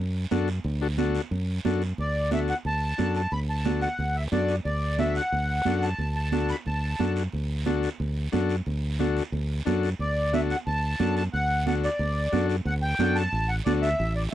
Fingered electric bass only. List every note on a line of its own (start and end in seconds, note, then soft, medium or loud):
0.00 0.24 F#2 medium
0.31 0.58 F#2 medium
0.64 1.18 D2 loud
1.31 1.58 F#2 medium
1.65 1.92 F#2 medium
1.98 2.52 D2 medium
2.65 2.92 D2 medium
2.99 3.25 F#2 medium
3.32 3.85 D2 medium
3.99 4.25 D2 medium
4.32 4.59 F#2 medium
4.65 5.19 D2 medium
5.32 5.59 D2 medium
5.66 5.93 F#2 medium
5.98 6.52 D2 medium
6.66 6.93 D2 medium
6.99 7.26 F#2 medium
7.33 7.87 D2 medium
8.00 8.26 D2 medium
8.33 8.60 F#2 medium
8.66 9.20 D2 medium
9.32 9.59 D2 medium
9.67 9.93 F#2 loud
9.99 10.53 D2 medium
10.67 10.93 D2 medium
11.00 11.27 F#2 loud
11.33 11.87 D2 medium
11.99 12.26 D2 medium
12.33 12.60 F#2 medium
12.65 12.92 D2 loud
12.99 13.26 F#2 medium
13.32 13.59 A1 medium
13.66 13.93 D2 loud
14.00 14.26 A1 loud